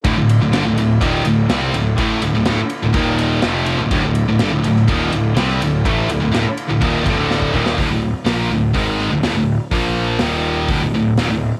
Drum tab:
RD |x-x-x-x-x-x-x-x-|x-x-x-x-x-x-x-x-|x-x-x-x-x-x-x-x-|x-x-x-x-x-x-----|
HH |----------------|----------------|----------------|----------------|
SD |----o-------o---|----o-----o-o---|----o--o----o---|----o-----o-o--o|
BD |o-------o-------|o-------o-------|o-------o-------|o-------o-o--oo-|

RD |----------------|----------------|
HH |o---o---o---o---|o---o---o---o---|
SD |----o-----o-o---|----o-------o---|
BD |o-------o-------|o-------o-------|